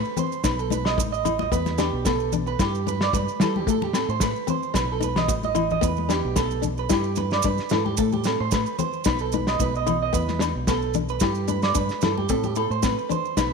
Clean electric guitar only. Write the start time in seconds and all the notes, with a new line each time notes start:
Already playing: B4
0.19 C5
0.45 B4
0.59 A4
0.73 B4
0.87 D#5
0.99 muted clean electric guitar stroke
1.12 D#5
1.39 D#5
1.52 B4
1.78 G4
2.06 A4
2.48 B4
2.61 G4
2.88 B4
3.03 D5
3.15 B4
3.42 A4
3.57 G4
3.70 A4
3.84 G4
3.96 A4
4.10 C5
4.23 B4
4.50 C5
4.76 B4
4.92 A4
5.04 B4
5.18 D#5
5.45 D#5
5.72 D#5
5.84 B4
6.10 G4
6.37 A4
6.79 B4
6.91 G4
7.18 B4
7.33 D5
7.46 B4
7.72 A4
7.86 G4
7.98 A4
8.13 G4
8.26 A4
8.40 C5
8.52 B4
8.79 C5
9.06 B4
9.21 A4
9.34 B4
9.48 D#5
9.62 B4
9.77 D#5
10.03 D#5
10.15 B4
10.69 A4
11.10 B4
11.22 G4
11.49 B4
11.64 D5
11.76 B4
12.03 A4
12.18 G4
12.30 A4
12.45 G4
12.57 A4
12.71 C5
12.84 B4
13.11 C5
13.37 B4